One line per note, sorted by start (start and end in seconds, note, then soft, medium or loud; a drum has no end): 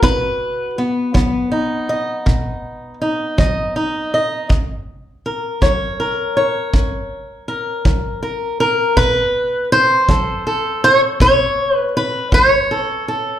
0.00 0.70 B2 medium
0.00 0.78 F#4 soft
0.00 1.51 B4 medium
0.00 kick medium
0.78 1.14 B3 soft
1.14 1.82 F#3 medium
1.14 4.50 B3 soft
1.14 kick medium
1.52 3.00 D#4 soft
1.89 3.38 D#5 soft
2.26 2.94 B2 medium
2.26 kick medium
3.02 3.75 D#4 soft
3.38 4.05 F#3 medium
3.38 4.13 D#5 soft
3.38 kick medium
3.76 4.50 D#4 soft
4.14 4.46 D#5 soft
4.49 5.17 F#2 medium
4.49 kick medium
5.26 5.99 A#4 soft
5.62 6.29 F#3 medium
5.62 6.35 C#5 soft
5.62 kick medium
6.00 7.47 A#4 soft
6.37 8.93 C#5 soft
6.73 7.41 F#2 medium
6.73 kick medium
7.48 8.21 A#4 soft
7.85 8.53 F#3 medium
7.85 kick medium
8.23 8.59 A#4 soft
8.60 8.97 A#4 medium
8.97 9.64 B2 medium
8.97 9.72 B4 medium
8.97 kick medium
9.72 10.84 C5 loud
10.09 10.76 F#3 medium
10.09 10.46 A4 soft
10.09 kick medium
10.47 12.71 A4 soft
10.84 11.00 C#5 loud
11.20 11.88 B2 medium
11.20 11.76 C#5 medium
11.20 kick medium
11.76 11.96 B4 medium
11.97 12.33 B4 medium
12.32 13.00 F#3 medium
12.32 13.39 C#5 medium
12.32 kick medium
12.71 13.08 A4 soft
13.08 13.39 A4 soft